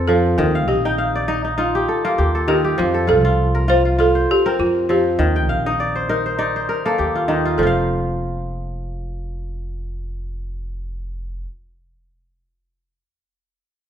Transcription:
Already playing: F2 C4 F4 A4 A#4 C5
0.08 F3 A4
0.38 D#2 D#3 A#4
0.55 F5
0.68 A#1 G4 D#5
0.85 D#4 G5
0.98 F5
1.15 D5
1.28 D#4 D#5
1.45 D#4
1.58 D#4 F4
1.75 G4
1.88 A4
2.05 A#3 F4
2.18 D#2 G4
2.35 A4
2.48 D#3 G4 A#4
2.64 G4
2.78 F2 F3 F4
2.94 A4
3.07 C2 F4 A4
3.25 F4
3.55 A#4
3.68 F4 C5
3.85 F4
3.98 F4 A4
4.15 C5
4.31 G4
4.46 C4 A#4
4.59 F2 F4
4.89 F3 G4
5.19 D#2 D#3
5.36 G5
5.49 A#1 F5
5.66 D#4 D#5
5.80 D5
5.96 C5
6.09 D#4 A#4
6.26 C5
6.39 D#4 D5
6.56 C5
6.69 A#4
6.86 A#3 A4
6.98 D#2 G4
7.15 F4
7.28 D#3 D#4
7.45 F4
7.58 F1 F3 A4
7.63 F4 F5

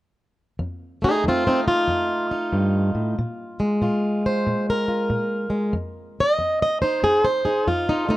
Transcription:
0.59 F2
1.02 A3 D#4 G#4
1.24 F2
1.28 C4 F4
1.47 C4 D#4
1.68 F4
1.88 F2
2.31 D#4
2.53 G2
2.95 A2
3.19 A#2
3.60 G#3
3.82 A#2 F4
4.26 C5
4.47 A#2
4.70 A#4
4.88 F4
5.10 A#2
5.50 G#3
5.73 F2
6.20 D#5
6.39 F2
6.62 D#5
6.82 D#4 C5
7.03 F2 G#4
7.25 C5
7.45 D#4 G#4
7.67 F2 F4
7.89 D#4
8.09 A3 D#4

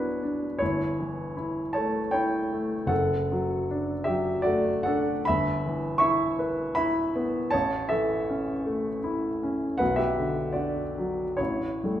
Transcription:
Already playing: G1 F#3 B3 D4 E4 F#4 B4 C#5 D5
0.22 D4
0.59 G1 E4 C#5
1.00 E3
1.37 E4
1.73 A3 C#5 A5
2.11 E4 C#5 G5
2.53 A3
2.86 F#1 A4 F#5
3.32 F#3
3.71 D4
4.04 F#3 G4 E5
4.42 A3 F#4 D5
4.83 D4 A4 F#5
5.25 G1 E5 B5
5.66 E3
5.98 E4 E5 C#6
6.39 B4
6.75 E4 E5 B5
7.16 B3
7.51 A1 C#5 A5
7.89 E3 A4 E5
8.30 C#4
8.66 A3
9.04 E4
9.43 C#4
9.78 B1 B4 F#5
9.96 G4 E5
10.18 D3
10.53 D4 F#4 D5
10.98 F#3
11.37 A1 E4 C#5
11.84 G3 A3

